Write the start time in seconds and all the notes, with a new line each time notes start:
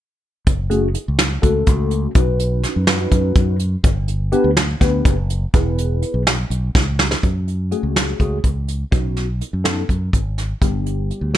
0.47 F#1, kick, closed hi-hat
0.70 A3 C#4 F#4 G#4, closed hi-hat
0.94 closed hi-hat
1.08 C#2
1.19 snare, closed hi-hat
1.42 C#2 A3 C#4 F#4 A4, kick, closed hi-hat
1.67 C#2, kick, closed hi-hat
1.91 closed hi-hat
2.15 B1 C#4 D#4 F#4 B4, kick, closed hi-hat
2.39 closed hi-hat
2.63 snare, closed hi-hat
2.76 F#2
2.87 C#4 D#4 F#4 B4, snare, closed hi-hat
3.11 F#2, kick, closed hi-hat
3.35 F#2, kick, closed hi-hat
3.59 closed hi-hat
3.84 G1, kick, closed hi-hat
4.08 closed hi-hat
4.32 B3 D4 G4 B4, closed hi-hat
4.44 D2
4.57 snare, closed hi-hat
4.81 D2 B3 D4 G4 B4, kick, snare, closed hi-hat
5.05 F#1, kick, closed hi-hat
5.30 closed hi-hat
5.54 E1 B3 E4 G#4 B4, kick, closed hi-hat
5.78 closed hi-hat
6.02 closed hi-hat
6.14 B1
6.27 snare, closed hi-hat
6.50 B1, closed hi-hat
6.75 C#2, kick, snare
6.99 snare
7.11 snare
7.23 F#2, kick, closed hi-hat
7.48 closed hi-hat
7.71 A3 C#4 F#4 G#4, closed hi-hat
7.83 C#2
7.96 snare, closed hi-hat
8.20 C#2 A3 C#4 F#4 G#4, kick, closed hi-hat
8.44 C#2, kick, closed hi-hat
8.68 closed hi-hat
8.91 B1 B3 C#4 D#4 F#4, kick, closed hi-hat
9.17 snare, closed hi-hat
9.41 closed hi-hat
9.53 F#2
9.64 B3 C#4 D#4 A4, snare, closed hi-hat
9.89 F#2, kick, closed hi-hat
10.13 G#1, kick, closed hi-hat
10.38 snare, closed hi-hat
10.61 G1 G3 B3 D4 G4, kick, closed hi-hat
10.86 closed hi-hat
11.10 closed hi-hat
11.21 D2
11.34 G3 B3 D4 G4, snare, closed hi-hat